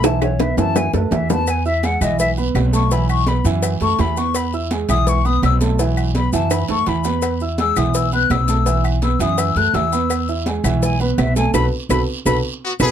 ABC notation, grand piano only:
X:1
M:4/4
L:1/8
Q:1/4=167
K:E
V:1 name="Grand piano"
[E,Ee]2 [B,Bb] [E,Ee]2 [A,Aa] [E,Ee] [B,Bb]- | [B,Bb] [Eee'] [G,Gg] [E,Ee]2 [B,Bb]2 [A,Aa] | [E,Ee]2 [B,Bb] [E,Ee]2 [A,Aa] [E,Ee] [B,Bb]- | [B,Bb] [Eee'] [G,Gg] [E,Ee]2 [B,Bb]2 [A,Aa] |
[E,Ee]2 [B,Bb] [E,Ee]2 [A,Aa] [E,Ee] [B,Bb]- | [B,Bb] [Eee'] [G,Gg] [E,Ee]2 [B,Bb]2 [A,Aa] | [E,Ee]2 [B,Bb] [E,Ee]2 [A,Aa] [E,Ee] [B,Bb]- | [B,Bb] [Eee'] [G,Gg] [E,Ee]2 [B,Bb]2 [A,Aa] |
[FAB] z [FAB] z [FAB] z2 [FAB] |]